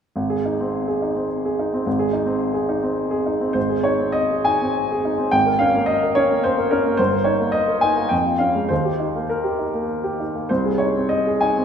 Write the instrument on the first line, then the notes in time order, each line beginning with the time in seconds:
upright piano
0.16 G#1
0.30 G#4
0.46 D#4
0.61 C4
0.88 G#4
1.02 D#4
1.16 C4
1.45 G#4
1.59 D#4
1.73 C4
1.86 G#1
1.99 G#4
2.13 D#4
2.26 C4
2.54 G#4
2.69 D#4
2.83 C4
3.11 G#4
3.26 D#4
3.41 C4
3.53 G#1 C5
3.69 G#4
3.83 D#4 C#5
4.00 C4
4.12 D#5
4.30 G#4
4.45 D#4 G#5
4.62 C4
4.92 G#4
5.05 D#4
5.18 C4
5.31 G#1 G5
5.46 A#4
5.59 C#4 F5
5.75 A#3
5.86 D#5
6.03 A#4
6.15 C#4 C#5
6.31 A#3
6.44 C5
6.58 A#4
6.71 C#4 A#4
6.86 A#3
6.97 G1 C5
7.12 A#4
7.24 D#4 C#5
7.40 A#3
7.52 D#5
7.68 A#4
7.81 D#4 G#5
7.98 A#3
8.09 F2 G5
8.26 F4
8.38 C#4 F5
8.55 G#3
8.69 D#2 C5
8.85 G4
9.00 D#4
9.15 A#3
9.29 A#4
9.44 G4
9.59 D#4
9.74 A#3
10.04 G4
10.20 D#4
10.35 A#3
10.49 C2 C5
10.65 G#4
10.78 D#4 C#5
10.96 C4
11.09 D#5
11.27 G#4
11.41 D#4 G#5
11.57 C4